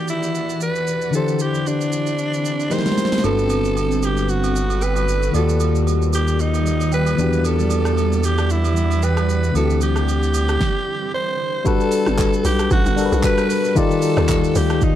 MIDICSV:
0, 0, Header, 1, 7, 480
1, 0, Start_track
1, 0, Key_signature, 1, "major"
1, 0, Tempo, 526316
1, 1034, Time_signature, 4, 2, 24, 8
1, 13638, End_track
2, 0, Start_track
2, 0, Title_t, "Alto saxophone"
2, 0, Program_c, 0, 65
2, 89, Note_on_c, 0, 64, 85
2, 528, Note_off_c, 0, 64, 0
2, 569, Note_on_c, 0, 71, 94
2, 1008, Note_off_c, 0, 71, 0
2, 1051, Note_on_c, 0, 69, 95
2, 1289, Note_on_c, 0, 67, 90
2, 1303, Note_off_c, 0, 69, 0
2, 1527, Note_on_c, 0, 62, 90
2, 1541, Note_off_c, 0, 67, 0
2, 2489, Note_on_c, 0, 72, 107
2, 2503, Note_off_c, 0, 62, 0
2, 2958, Note_off_c, 0, 72, 0
2, 2963, Note_on_c, 0, 69, 106
2, 3688, Note_on_c, 0, 67, 91
2, 3701, Note_off_c, 0, 69, 0
2, 3922, Note_on_c, 0, 66, 93
2, 3935, Note_off_c, 0, 67, 0
2, 4405, Note_on_c, 0, 71, 93
2, 4419, Note_off_c, 0, 66, 0
2, 4875, Note_off_c, 0, 71, 0
2, 4881, Note_on_c, 0, 69, 85
2, 5319, Note_off_c, 0, 69, 0
2, 5606, Note_on_c, 0, 67, 90
2, 5843, Note_on_c, 0, 63, 94
2, 5857, Note_off_c, 0, 67, 0
2, 6318, Note_off_c, 0, 63, 0
2, 6327, Note_on_c, 0, 71, 103
2, 6803, Note_on_c, 0, 69, 103
2, 6817, Note_off_c, 0, 71, 0
2, 7522, Note_on_c, 0, 67, 92
2, 7536, Note_off_c, 0, 69, 0
2, 7762, Note_on_c, 0, 64, 92
2, 7775, Note_off_c, 0, 67, 0
2, 8243, Note_on_c, 0, 71, 102
2, 8257, Note_off_c, 0, 64, 0
2, 8719, Note_off_c, 0, 71, 0
2, 8723, Note_on_c, 0, 69, 96
2, 8942, Note_off_c, 0, 69, 0
2, 8964, Note_on_c, 0, 67, 95
2, 10122, Note_off_c, 0, 67, 0
2, 10162, Note_on_c, 0, 72, 102
2, 10639, Note_on_c, 0, 69, 113
2, 10652, Note_off_c, 0, 72, 0
2, 11356, Note_off_c, 0, 69, 0
2, 11360, Note_on_c, 0, 67, 103
2, 11580, Note_off_c, 0, 67, 0
2, 11602, Note_on_c, 0, 66, 100
2, 12044, Note_off_c, 0, 66, 0
2, 12087, Note_on_c, 0, 71, 113
2, 12568, Note_on_c, 0, 69, 108
2, 12582, Note_off_c, 0, 71, 0
2, 13286, Note_on_c, 0, 67, 93
2, 13300, Note_off_c, 0, 69, 0
2, 13529, Note_on_c, 0, 63, 99
2, 13543, Note_off_c, 0, 67, 0
2, 13638, Note_off_c, 0, 63, 0
2, 13638, End_track
3, 0, Start_track
3, 0, Title_t, "Tine electric piano"
3, 0, Program_c, 1, 4
3, 0, Control_c, 1, 64, 127
3, 0, Note_on_c, 1, 52, 65
3, 0, Note_on_c, 1, 64, 58
3, 0, Note_on_c, 1, 66, 60
3, 0, Note_on_c, 1, 67, 62
3, 0, Note_on_c, 1, 74, 74
3, 745, Note_off_c, 1, 52, 0
3, 752, Note_off_c, 1, 64, 0
3, 759, Note_off_c, 1, 66, 0
3, 766, Note_off_c, 1, 67, 0
3, 773, Note_off_c, 1, 74, 0
3, 1009, Note_on_c, 1, 50, 63
3, 1023, Note_on_c, 1, 62, 59
3, 1037, Note_on_c, 1, 64, 57
3, 1047, Control_c, 1, 64, 0
3, 1051, Note_on_c, 1, 67, 56
3, 1064, Note_on_c, 1, 72, 70
3, 1210, Control_c, 1, 64, 127
3, 2432, Note_off_c, 1, 50, 0
3, 2439, Note_off_c, 1, 62, 0
3, 2447, Note_off_c, 1, 64, 0
3, 2454, Note_off_c, 1, 67, 0
3, 2461, Note_off_c, 1, 72, 0
3, 2462, Note_on_c, 1, 56, 64
3, 2469, Note_on_c, 1, 63, 56
3, 2476, Note_on_c, 1, 67, 57
3, 2484, Note_on_c, 1, 70, 57
3, 2487, Control_c, 1, 64, 0
3, 2489, Note_on_c, 1, 72, 74
3, 2647, Control_c, 1, 64, 127
3, 2925, Note_on_c, 1, 55, 61
3, 2939, Note_on_c, 1, 62, 56
3, 2948, Note_off_c, 1, 56, 0
3, 2951, Note_off_c, 1, 63, 0
3, 2953, Note_on_c, 1, 66, 56
3, 2955, Note_off_c, 1, 67, 0
3, 2959, Note_off_c, 1, 70, 0
3, 2962, Note_off_c, 1, 72, 0
3, 2964, Control_c, 1, 64, 0
3, 2967, Note_on_c, 1, 69, 57
3, 2981, Note_on_c, 1, 71, 68
3, 3142, Control_c, 1, 64, 127
3, 4823, Note_off_c, 1, 55, 0
3, 4830, Note_off_c, 1, 62, 0
3, 4837, Note_off_c, 1, 66, 0
3, 4844, Note_off_c, 1, 69, 0
3, 4846, Note_on_c, 1, 51, 65
3, 4851, Note_off_c, 1, 71, 0
3, 4861, Note_on_c, 1, 58, 59
3, 4873, Note_on_c, 1, 74, 60
3, 4886, Control_c, 1, 64, 0
3, 4888, Note_on_c, 1, 65, 56
3, 4903, Note_on_c, 1, 66, 58
3, 4952, Note_off_c, 1, 66, 0
3, 4961, Note_on_c, 1, 67, 70
3, 5039, Control_c, 1, 64, 127
3, 6506, Note_off_c, 1, 51, 0
3, 6514, Note_off_c, 1, 58, 0
3, 6520, Note_off_c, 1, 74, 0
3, 6526, Note_on_c, 1, 52, 65
3, 6528, Note_off_c, 1, 65, 0
3, 6540, Note_on_c, 1, 59, 59
3, 6554, Note_on_c, 1, 62, 61
3, 6565, Note_off_c, 1, 67, 0
3, 6567, Control_c, 1, 64, 0
3, 6567, Note_on_c, 1, 66, 58
3, 6582, Note_on_c, 1, 67, 72
3, 6741, Control_c, 1, 64, 127
3, 8423, Note_off_c, 1, 52, 0
3, 8430, Note_off_c, 1, 59, 0
3, 8438, Note_off_c, 1, 62, 0
3, 8444, Note_off_c, 1, 66, 0
3, 8452, Note_off_c, 1, 67, 0
3, 8685, Note_on_c, 1, 50, 66
3, 8700, Note_on_c, 1, 57, 58
3, 8714, Note_on_c, 1, 60, 60
3, 8726, Control_c, 1, 64, 0
3, 8727, Note_on_c, 1, 64, 59
3, 8742, Note_on_c, 1, 66, 58
3, 8791, Note_off_c, 1, 66, 0
3, 8799, Note_on_c, 1, 67, 73
3, 8882, Control_c, 1, 64, 127
3, 9640, Note_off_c, 1, 50, 0
3, 9647, Note_off_c, 1, 57, 0
3, 9655, Note_off_c, 1, 60, 0
3, 9662, Note_off_c, 1, 64, 0
3, 9684, Control_c, 1, 64, 0
3, 9698, Note_off_c, 1, 67, 0
3, 10621, Note_on_c, 1, 55, 99
3, 10630, Note_on_c, 1, 62, 90
3, 10636, Note_on_c, 1, 66, 92
3, 10643, Note_on_c, 1, 69, 91
3, 10650, Note_on_c, 1, 71, 114
3, 10796, Control_c, 1, 64, 127
3, 11400, Note_off_c, 1, 55, 0
3, 11405, Note_off_c, 1, 62, 0
3, 11408, Note_off_c, 1, 66, 0
3, 11411, Note_off_c, 1, 69, 0
3, 11415, Note_off_c, 1, 71, 0
3, 11823, Note_on_c, 1, 55, 77
3, 11830, Note_on_c, 1, 62, 69
3, 11837, Note_on_c, 1, 66, 73
3, 11844, Note_on_c, 1, 69, 71
3, 11851, Note_on_c, 1, 70, 70
3, 11906, Note_off_c, 1, 70, 0
3, 11908, Note_on_c, 1, 71, 84
3, 12414, Note_off_c, 1, 55, 0
3, 12417, Note_off_c, 1, 62, 0
3, 12421, Note_off_c, 1, 66, 0
3, 12424, Note_off_c, 1, 69, 0
3, 12456, Note_off_c, 1, 71, 0
3, 12541, Note_on_c, 1, 51, 96
3, 12548, Note_on_c, 1, 63, 94
3, 12554, Note_on_c, 1, 65, 94
3, 12561, Note_on_c, 1, 67, 91
3, 12567, Control_c, 1, 64, 0
3, 12568, Note_on_c, 1, 74, 107
3, 12703, Control_c, 1, 64, 127
3, 13320, Note_off_c, 1, 51, 0
3, 13324, Note_off_c, 1, 63, 0
3, 13327, Note_off_c, 1, 65, 0
3, 13330, Note_off_c, 1, 67, 0
3, 13334, Note_off_c, 1, 74, 0
3, 13638, End_track
4, 0, Start_track
4, 0, Title_t, "Ambient pad"
4, 0, Program_c, 2, 92
4, 0, Note_on_c, 2, 52, 72
4, 0, Note_on_c, 2, 74, 65
4, 0, Note_on_c, 2, 78, 67
4, 997, Note_off_c, 2, 74, 0
4, 1014, Note_off_c, 2, 52, 0
4, 1014, Note_off_c, 2, 78, 0
4, 1034, Note_on_c, 2, 50, 74
4, 1034, Note_on_c, 2, 60, 70
4, 1034, Note_on_c, 2, 64, 70
4, 2459, Note_off_c, 2, 50, 0
4, 2460, Note_off_c, 2, 60, 0
4, 2460, Note_off_c, 2, 64, 0
4, 2953, Note_on_c, 2, 55, 75
4, 2953, Note_on_c, 2, 66, 67
4, 2953, Note_on_c, 2, 69, 71
4, 2955, Note_on_c, 2, 71, 82
4, 4854, Note_off_c, 2, 55, 0
4, 4854, Note_off_c, 2, 66, 0
4, 4854, Note_off_c, 2, 69, 0
4, 4855, Note_off_c, 2, 71, 0
4, 4874, Note_on_c, 2, 55, 83
4, 4876, Note_on_c, 2, 51, 74
4, 4876, Note_on_c, 2, 58, 71
4, 4876, Note_on_c, 2, 74, 68
4, 6538, Note_off_c, 2, 51, 0
4, 6538, Note_off_c, 2, 58, 0
4, 6553, Note_on_c, 2, 52, 71
4, 6554, Note_on_c, 2, 78, 67
4, 8679, Note_off_c, 2, 74, 0
4, 8692, Note_off_c, 2, 52, 0
4, 8692, Note_off_c, 2, 78, 0
4, 9637, Note_off_c, 2, 55, 0
4, 10631, Note_on_c, 2, 66, 72
4, 10632, Note_on_c, 2, 55, 81
4, 10632, Note_on_c, 2, 69, 72
4, 10632, Note_on_c, 2, 71, 87
4, 12533, Note_off_c, 2, 66, 0
4, 12534, Note_off_c, 2, 55, 0
4, 12534, Note_off_c, 2, 69, 0
4, 12534, Note_off_c, 2, 71, 0
4, 12554, Note_on_c, 2, 58, 70
4, 12554, Note_on_c, 2, 63, 79
4, 12555, Note_on_c, 2, 67, 87
4, 13638, Note_off_c, 2, 58, 0
4, 13638, Note_off_c, 2, 63, 0
4, 13638, Note_off_c, 2, 67, 0
4, 13638, End_track
5, 0, Start_track
5, 0, Title_t, "Analog synth bass"
5, 0, Program_c, 3, 38
5, 2954, Note_on_c, 3, 31, 88
5, 4838, Note_off_c, 3, 31, 0
5, 4874, Note_on_c, 3, 39, 83
5, 6520, Note_off_c, 3, 39, 0
5, 6551, Note_on_c, 3, 40, 80
5, 8676, Note_off_c, 3, 40, 0
5, 8710, Note_on_c, 3, 38, 83
5, 9653, Note_off_c, 3, 38, 0
5, 13638, End_track
6, 0, Start_track
6, 0, Title_t, "Log drum bass"
6, 0, Program_c, 4, 39
6, 11006, Note_on_c, 4, 31, 102
6, 11329, Note_off_c, 4, 31, 0
6, 11352, Note_on_c, 4, 35, 93
6, 11576, Note_off_c, 4, 35, 0
6, 11591, Note_on_c, 4, 33, 103
6, 11715, Note_off_c, 4, 33, 0
6, 11726, Note_on_c, 4, 31, 85
6, 11949, Note_off_c, 4, 31, 0
6, 11966, Note_on_c, 4, 35, 93
6, 12066, Note_off_c, 4, 35, 0
6, 12925, Note_on_c, 4, 39, 92
6, 13249, Note_off_c, 4, 39, 0
6, 13276, Note_on_c, 4, 38, 90
6, 13620, Note_off_c, 4, 38, 0
6, 13638, End_track
7, 0, Start_track
7, 0, Title_t, "Drums"
7, 73, Note_on_c, 9, 82, 66
7, 164, Note_off_c, 9, 82, 0
7, 210, Note_on_c, 9, 82, 56
7, 301, Note_off_c, 9, 82, 0
7, 318, Note_on_c, 9, 82, 73
7, 409, Note_off_c, 9, 82, 0
7, 452, Note_on_c, 9, 82, 48
7, 543, Note_off_c, 9, 82, 0
7, 555, Note_on_c, 9, 82, 73
7, 646, Note_off_c, 9, 82, 0
7, 689, Note_on_c, 9, 82, 53
7, 780, Note_off_c, 9, 82, 0
7, 796, Note_on_c, 9, 82, 78
7, 888, Note_off_c, 9, 82, 0
7, 926, Note_on_c, 9, 82, 51
7, 1017, Note_off_c, 9, 82, 0
7, 1034, Note_on_c, 9, 82, 80
7, 1126, Note_off_c, 9, 82, 0
7, 1168, Note_on_c, 9, 82, 55
7, 1259, Note_off_c, 9, 82, 0
7, 1269, Note_on_c, 9, 82, 95
7, 1360, Note_off_c, 9, 82, 0
7, 1409, Note_on_c, 9, 82, 47
7, 1501, Note_off_c, 9, 82, 0
7, 1520, Note_on_c, 9, 82, 73
7, 1611, Note_off_c, 9, 82, 0
7, 1651, Note_on_c, 9, 82, 55
7, 1742, Note_off_c, 9, 82, 0
7, 1753, Note_on_c, 9, 82, 93
7, 1844, Note_off_c, 9, 82, 0
7, 1884, Note_on_c, 9, 82, 50
7, 1975, Note_off_c, 9, 82, 0
7, 1992, Note_on_c, 9, 82, 66
7, 2084, Note_off_c, 9, 82, 0
7, 2130, Note_on_c, 9, 82, 57
7, 2222, Note_off_c, 9, 82, 0
7, 2237, Note_on_c, 9, 82, 74
7, 2328, Note_off_c, 9, 82, 0
7, 2370, Note_on_c, 9, 82, 51
7, 2461, Note_off_c, 9, 82, 0
7, 2473, Note_on_c, 9, 82, 74
7, 2474, Note_on_c, 9, 38, 52
7, 2540, Note_off_c, 9, 38, 0
7, 2540, Note_on_c, 9, 38, 51
7, 2564, Note_off_c, 9, 82, 0
7, 2607, Note_off_c, 9, 38, 0
7, 2607, Note_on_c, 9, 38, 62
7, 2608, Note_on_c, 9, 82, 52
7, 2661, Note_off_c, 9, 38, 0
7, 2661, Note_on_c, 9, 38, 60
7, 2699, Note_off_c, 9, 82, 0
7, 2715, Note_off_c, 9, 38, 0
7, 2715, Note_on_c, 9, 38, 73
7, 2716, Note_on_c, 9, 82, 78
7, 2782, Note_off_c, 9, 38, 0
7, 2782, Note_on_c, 9, 38, 67
7, 2807, Note_off_c, 9, 82, 0
7, 2847, Note_on_c, 9, 82, 51
7, 2848, Note_off_c, 9, 38, 0
7, 2848, Note_on_c, 9, 38, 89
7, 2900, Note_off_c, 9, 38, 0
7, 2900, Note_on_c, 9, 38, 81
7, 2938, Note_off_c, 9, 82, 0
7, 2954, Note_on_c, 9, 67, 73
7, 2954, Note_on_c, 9, 82, 77
7, 2992, Note_off_c, 9, 38, 0
7, 3045, Note_off_c, 9, 67, 0
7, 3045, Note_off_c, 9, 82, 0
7, 3088, Note_on_c, 9, 82, 53
7, 3180, Note_off_c, 9, 82, 0
7, 3189, Note_on_c, 9, 82, 88
7, 3192, Note_on_c, 9, 67, 73
7, 3280, Note_off_c, 9, 82, 0
7, 3283, Note_off_c, 9, 67, 0
7, 3327, Note_on_c, 9, 82, 50
7, 3418, Note_off_c, 9, 82, 0
7, 3435, Note_on_c, 9, 67, 67
7, 3440, Note_on_c, 9, 82, 70
7, 3527, Note_off_c, 9, 67, 0
7, 3531, Note_off_c, 9, 82, 0
7, 3570, Note_on_c, 9, 82, 55
7, 3661, Note_off_c, 9, 82, 0
7, 3672, Note_on_c, 9, 67, 65
7, 3673, Note_on_c, 9, 82, 93
7, 3764, Note_off_c, 9, 67, 0
7, 3764, Note_off_c, 9, 82, 0
7, 3804, Note_on_c, 9, 82, 51
7, 3895, Note_off_c, 9, 82, 0
7, 3911, Note_on_c, 9, 82, 64
7, 4002, Note_off_c, 9, 82, 0
7, 4048, Note_on_c, 9, 67, 69
7, 4048, Note_on_c, 9, 82, 57
7, 4139, Note_off_c, 9, 67, 0
7, 4140, Note_off_c, 9, 82, 0
7, 4158, Note_on_c, 9, 82, 77
7, 4249, Note_off_c, 9, 82, 0
7, 4287, Note_on_c, 9, 67, 68
7, 4290, Note_on_c, 9, 82, 50
7, 4378, Note_off_c, 9, 67, 0
7, 4381, Note_off_c, 9, 82, 0
7, 4393, Note_on_c, 9, 77, 68
7, 4393, Note_on_c, 9, 82, 74
7, 4484, Note_off_c, 9, 82, 0
7, 4485, Note_off_c, 9, 77, 0
7, 4526, Note_on_c, 9, 67, 77
7, 4527, Note_on_c, 9, 82, 56
7, 4617, Note_off_c, 9, 67, 0
7, 4618, Note_off_c, 9, 82, 0
7, 4638, Note_on_c, 9, 82, 79
7, 4729, Note_off_c, 9, 82, 0
7, 4767, Note_on_c, 9, 82, 49
7, 4858, Note_off_c, 9, 82, 0
7, 4874, Note_on_c, 9, 67, 72
7, 4874, Note_on_c, 9, 82, 75
7, 4965, Note_off_c, 9, 67, 0
7, 4965, Note_off_c, 9, 82, 0
7, 5008, Note_on_c, 9, 82, 55
7, 5099, Note_off_c, 9, 82, 0
7, 5108, Note_on_c, 9, 82, 91
7, 5110, Note_on_c, 9, 67, 73
7, 5199, Note_off_c, 9, 82, 0
7, 5202, Note_off_c, 9, 67, 0
7, 5248, Note_on_c, 9, 82, 50
7, 5339, Note_off_c, 9, 82, 0
7, 5353, Note_on_c, 9, 67, 67
7, 5359, Note_on_c, 9, 82, 71
7, 5444, Note_off_c, 9, 67, 0
7, 5450, Note_off_c, 9, 82, 0
7, 5491, Note_on_c, 9, 82, 52
7, 5582, Note_off_c, 9, 82, 0
7, 5590, Note_on_c, 9, 67, 64
7, 5592, Note_on_c, 9, 82, 100
7, 5682, Note_off_c, 9, 67, 0
7, 5684, Note_off_c, 9, 82, 0
7, 5724, Note_on_c, 9, 82, 51
7, 5815, Note_off_c, 9, 82, 0
7, 5832, Note_on_c, 9, 82, 66
7, 5923, Note_off_c, 9, 82, 0
7, 5966, Note_on_c, 9, 67, 66
7, 5968, Note_on_c, 9, 82, 57
7, 6057, Note_off_c, 9, 67, 0
7, 6059, Note_off_c, 9, 82, 0
7, 6077, Note_on_c, 9, 82, 77
7, 6168, Note_off_c, 9, 82, 0
7, 6204, Note_on_c, 9, 67, 65
7, 6209, Note_on_c, 9, 82, 50
7, 6295, Note_off_c, 9, 67, 0
7, 6301, Note_off_c, 9, 82, 0
7, 6310, Note_on_c, 9, 77, 63
7, 6312, Note_on_c, 9, 82, 73
7, 6401, Note_off_c, 9, 77, 0
7, 6403, Note_off_c, 9, 82, 0
7, 6442, Note_on_c, 9, 67, 76
7, 6445, Note_on_c, 9, 82, 54
7, 6533, Note_off_c, 9, 67, 0
7, 6536, Note_off_c, 9, 82, 0
7, 6555, Note_on_c, 9, 82, 81
7, 6646, Note_off_c, 9, 82, 0
7, 6685, Note_on_c, 9, 82, 50
7, 6776, Note_off_c, 9, 82, 0
7, 6791, Note_on_c, 9, 67, 71
7, 6793, Note_on_c, 9, 82, 79
7, 6882, Note_off_c, 9, 67, 0
7, 6884, Note_off_c, 9, 82, 0
7, 6926, Note_on_c, 9, 82, 54
7, 7017, Note_off_c, 9, 82, 0
7, 7027, Note_on_c, 9, 82, 94
7, 7028, Note_on_c, 9, 67, 74
7, 7118, Note_off_c, 9, 82, 0
7, 7119, Note_off_c, 9, 67, 0
7, 7161, Note_on_c, 9, 37, 91
7, 7165, Note_on_c, 9, 82, 50
7, 7252, Note_off_c, 9, 37, 0
7, 7257, Note_off_c, 9, 82, 0
7, 7271, Note_on_c, 9, 67, 68
7, 7278, Note_on_c, 9, 82, 69
7, 7363, Note_off_c, 9, 67, 0
7, 7369, Note_off_c, 9, 82, 0
7, 7411, Note_on_c, 9, 82, 57
7, 7502, Note_off_c, 9, 82, 0
7, 7509, Note_on_c, 9, 67, 66
7, 7510, Note_on_c, 9, 82, 97
7, 7600, Note_off_c, 9, 67, 0
7, 7602, Note_off_c, 9, 82, 0
7, 7644, Note_on_c, 9, 82, 54
7, 7646, Note_on_c, 9, 37, 96
7, 7735, Note_off_c, 9, 82, 0
7, 7737, Note_off_c, 9, 37, 0
7, 7750, Note_on_c, 9, 82, 65
7, 7841, Note_off_c, 9, 82, 0
7, 7883, Note_on_c, 9, 67, 68
7, 7886, Note_on_c, 9, 82, 57
7, 7975, Note_off_c, 9, 67, 0
7, 7977, Note_off_c, 9, 82, 0
7, 7994, Note_on_c, 9, 82, 74
7, 8085, Note_off_c, 9, 82, 0
7, 8122, Note_on_c, 9, 67, 70
7, 8128, Note_on_c, 9, 82, 50
7, 8214, Note_off_c, 9, 67, 0
7, 8219, Note_off_c, 9, 82, 0
7, 8231, Note_on_c, 9, 77, 66
7, 8232, Note_on_c, 9, 82, 75
7, 8322, Note_off_c, 9, 77, 0
7, 8323, Note_off_c, 9, 82, 0
7, 8363, Note_on_c, 9, 37, 92
7, 8363, Note_on_c, 9, 67, 75
7, 8366, Note_on_c, 9, 82, 57
7, 8454, Note_off_c, 9, 37, 0
7, 8454, Note_off_c, 9, 67, 0
7, 8457, Note_off_c, 9, 82, 0
7, 8476, Note_on_c, 9, 82, 79
7, 8567, Note_off_c, 9, 82, 0
7, 8606, Note_on_c, 9, 82, 49
7, 8697, Note_off_c, 9, 82, 0
7, 8712, Note_on_c, 9, 67, 73
7, 8714, Note_on_c, 9, 82, 77
7, 8803, Note_off_c, 9, 67, 0
7, 8805, Note_off_c, 9, 82, 0
7, 8848, Note_on_c, 9, 82, 55
7, 8940, Note_off_c, 9, 82, 0
7, 8948, Note_on_c, 9, 82, 89
7, 8951, Note_on_c, 9, 67, 72
7, 9039, Note_off_c, 9, 82, 0
7, 9042, Note_off_c, 9, 67, 0
7, 9082, Note_on_c, 9, 37, 87
7, 9086, Note_on_c, 9, 82, 50
7, 9173, Note_off_c, 9, 37, 0
7, 9177, Note_off_c, 9, 82, 0
7, 9193, Note_on_c, 9, 67, 68
7, 9199, Note_on_c, 9, 82, 68
7, 9284, Note_off_c, 9, 67, 0
7, 9290, Note_off_c, 9, 82, 0
7, 9330, Note_on_c, 9, 82, 52
7, 9422, Note_off_c, 9, 82, 0
7, 9430, Note_on_c, 9, 67, 68
7, 9432, Note_on_c, 9, 82, 98
7, 9521, Note_off_c, 9, 67, 0
7, 9523, Note_off_c, 9, 82, 0
7, 9564, Note_on_c, 9, 82, 54
7, 9567, Note_on_c, 9, 37, 95
7, 9655, Note_off_c, 9, 82, 0
7, 9658, Note_off_c, 9, 37, 0
7, 9673, Note_on_c, 9, 36, 102
7, 9673, Note_on_c, 9, 38, 85
7, 9764, Note_off_c, 9, 36, 0
7, 9764, Note_off_c, 9, 38, 0
7, 10632, Note_on_c, 9, 82, 88
7, 10634, Note_on_c, 9, 36, 124
7, 10723, Note_off_c, 9, 82, 0
7, 10725, Note_off_c, 9, 36, 0
7, 10767, Note_on_c, 9, 82, 60
7, 10858, Note_off_c, 9, 82, 0
7, 10867, Note_on_c, 9, 46, 61
7, 10867, Note_on_c, 9, 82, 102
7, 10959, Note_off_c, 9, 46, 0
7, 10959, Note_off_c, 9, 82, 0
7, 11002, Note_on_c, 9, 37, 95
7, 11007, Note_on_c, 9, 82, 53
7, 11093, Note_off_c, 9, 37, 0
7, 11098, Note_off_c, 9, 82, 0
7, 11113, Note_on_c, 9, 39, 106
7, 11115, Note_on_c, 9, 36, 98
7, 11119, Note_on_c, 9, 82, 79
7, 11205, Note_off_c, 9, 39, 0
7, 11206, Note_off_c, 9, 36, 0
7, 11211, Note_off_c, 9, 82, 0
7, 11249, Note_on_c, 9, 82, 61
7, 11340, Note_off_c, 9, 82, 0
7, 11352, Note_on_c, 9, 46, 63
7, 11352, Note_on_c, 9, 82, 111
7, 11443, Note_off_c, 9, 46, 0
7, 11443, Note_off_c, 9, 82, 0
7, 11483, Note_on_c, 9, 82, 59
7, 11485, Note_on_c, 9, 37, 101
7, 11574, Note_off_c, 9, 82, 0
7, 11576, Note_off_c, 9, 37, 0
7, 11590, Note_on_c, 9, 82, 71
7, 11592, Note_on_c, 9, 36, 121
7, 11681, Note_off_c, 9, 82, 0
7, 11683, Note_off_c, 9, 36, 0
7, 11727, Note_on_c, 9, 82, 61
7, 11818, Note_off_c, 9, 82, 0
7, 11835, Note_on_c, 9, 46, 48
7, 11835, Note_on_c, 9, 82, 79
7, 11926, Note_off_c, 9, 46, 0
7, 11926, Note_off_c, 9, 82, 0
7, 11968, Note_on_c, 9, 82, 53
7, 12059, Note_off_c, 9, 82, 0
7, 12070, Note_on_c, 9, 39, 98
7, 12070, Note_on_c, 9, 82, 80
7, 12072, Note_on_c, 9, 36, 100
7, 12161, Note_off_c, 9, 39, 0
7, 12161, Note_off_c, 9, 82, 0
7, 12163, Note_off_c, 9, 36, 0
7, 12201, Note_on_c, 9, 37, 96
7, 12204, Note_on_c, 9, 82, 62
7, 12292, Note_off_c, 9, 37, 0
7, 12295, Note_off_c, 9, 82, 0
7, 12313, Note_on_c, 9, 46, 50
7, 12313, Note_on_c, 9, 82, 85
7, 12404, Note_off_c, 9, 46, 0
7, 12404, Note_off_c, 9, 82, 0
7, 12443, Note_on_c, 9, 82, 55
7, 12534, Note_off_c, 9, 82, 0
7, 12552, Note_on_c, 9, 82, 91
7, 12554, Note_on_c, 9, 36, 123
7, 12644, Note_off_c, 9, 82, 0
7, 12645, Note_off_c, 9, 36, 0
7, 12687, Note_on_c, 9, 82, 60
7, 12778, Note_off_c, 9, 82, 0
7, 12787, Note_on_c, 9, 46, 60
7, 12787, Note_on_c, 9, 82, 100
7, 12879, Note_off_c, 9, 46, 0
7, 12879, Note_off_c, 9, 82, 0
7, 12922, Note_on_c, 9, 37, 96
7, 12927, Note_on_c, 9, 82, 55
7, 13013, Note_off_c, 9, 37, 0
7, 13018, Note_off_c, 9, 82, 0
7, 13032, Note_on_c, 9, 39, 109
7, 13035, Note_on_c, 9, 36, 100
7, 13038, Note_on_c, 9, 82, 77
7, 13123, Note_off_c, 9, 39, 0
7, 13127, Note_off_c, 9, 36, 0
7, 13129, Note_off_c, 9, 82, 0
7, 13170, Note_on_c, 9, 82, 61
7, 13262, Note_off_c, 9, 82, 0
7, 13273, Note_on_c, 9, 46, 61
7, 13273, Note_on_c, 9, 82, 110
7, 13364, Note_off_c, 9, 46, 0
7, 13364, Note_off_c, 9, 82, 0
7, 13404, Note_on_c, 9, 82, 56
7, 13406, Note_on_c, 9, 37, 103
7, 13495, Note_off_c, 9, 82, 0
7, 13498, Note_off_c, 9, 37, 0
7, 13510, Note_on_c, 9, 82, 73
7, 13513, Note_on_c, 9, 36, 119
7, 13601, Note_off_c, 9, 82, 0
7, 13604, Note_off_c, 9, 36, 0
7, 13638, End_track
0, 0, End_of_file